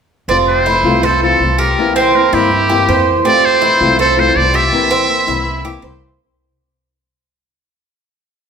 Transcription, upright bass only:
0.28 0.81 F1 medium
0.83 1.36 C2 medium
1.40 1.73 C2 medium
2.33 2.85 G2 medium
2.88 3.21 F2 medium
3.81 4.32 C2 medium
4.36 4.68 C2 medium
5.28 5.79 C2 medium
5.83 6.16 C2 medium

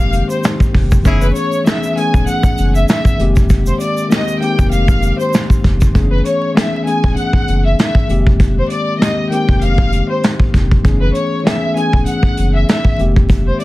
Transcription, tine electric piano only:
0.00 1.07 D#3 medium
0.00 1.07 G#3 medium
0.00 1.07 A#3 medium
0.00 1.07 C4 medium
0.00 1.07 G4 medium
1.03 1.44 E3 medium
1.03 1.45 A3 medium
1.03 1.45 B3 medium
1.03 1.46 C#4 medium
1.03 1.46 G#4 medium
1.64 1.86 E3 medium
1.64 1.86 A3 medium
1.64 1.87 B3 medium
1.64 1.87 C#4 medium
1.64 1.88 G#4 medium
1.96 2.77 E3 medium
1.96 2.77 A3 medium
1.96 2.78 B3 medium
1.96 2.78 C#4 medium
1.96 2.78 G#4 medium
3.18 3.93 D#3 medium
3.18 3.94 G#3 medium
3.18 3.94 A#3 medium
3.18 3.94 C4 medium
3.18 3.95 G4 medium
4.08 4.31 D#3 medium
4.08 4.31 G#3 medium
4.08 4.32 A#3 medium
4.08 4.32 C4 medium
4.08 4.32 G4 medium
4.40 5.22 D#3 medium
4.40 5.22 G#3 medium
4.40 5.22 A#3 medium
4.40 5.23 C4 medium
4.40 5.23 G4 medium
5.92 6.34 E3 medium
5.92 6.35 A3 medium
5.92 6.35 B3 medium
5.92 6.35 C#4 medium
5.92 6.36 G#4 medium
6.53 6.76 E3 medium
6.53 6.76 A3 medium
6.53 6.77 B3 medium
6.53 6.77 C#4 medium
6.53 6.77 G#4 medium
6.85 7.67 E3 medium
6.85 7.67 A3 medium
6.85 7.67 B3 medium
6.85 7.68 C#4 medium
6.85 7.68 G#4 medium
8.07 8.83 D#3 medium
8.07 8.83 G#3 medium
8.07 8.84 A#3 medium
8.07 8.84 C4 medium
8.07 8.85 G4 medium
8.98 9.20 D#3 medium
8.98 9.21 G#3 medium
8.98 9.21 A#3 medium
8.98 9.22 C4 medium
8.98 9.22 G4 medium
9.30 10.11 D#3 medium
9.30 10.12 G#3 medium
9.30 10.12 A#3 medium
9.30 10.13 C4 medium
9.30 10.13 G4 medium
10.82 11.24 E3 medium
10.82 11.24 A3 medium
10.82 11.25 B3 medium
10.82 11.25 C#4 medium
10.82 11.26 G#4 medium
11.43 11.65 E3 medium
11.43 11.66 A3 medium
11.43 11.66 B3 medium
11.43 11.67 C#4 medium
11.43 11.67 G#4 medium
11.75 12.56 E3 medium
11.75 12.57 A3 medium
11.75 12.57 B3 medium
11.75 12.57 C#4 medium
11.75 12.58 G#4 medium
12.97 13.64 D#3 medium
12.97 13.64 G#3 medium
12.97 13.64 A#3 medium
12.97 13.64 C4 medium
12.97 13.64 G4 medium

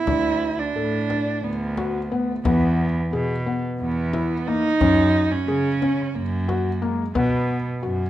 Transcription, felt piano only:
0.07 0.47 D4 medium
0.76 0.95 A4 medium
1.10 1.49 D4 medium
1.78 1.97 F#4 medium
2.12 2.31 B3 medium
2.45 2.84 B3 medium
3.13 3.32 G#4 medium
3.46 3.85 B3 medium
4.13 4.33 E4 medium
4.48 4.67 A#3 medium
4.81 5.20 C#4 medium
5.48 5.67 G#4 medium
5.82 6.20 C#4 medium
6.48 6.68 F#4 medium
6.82 7.01 A#3 medium
7.15 7.54 B3 medium
7.83 8.02 F#4 medium

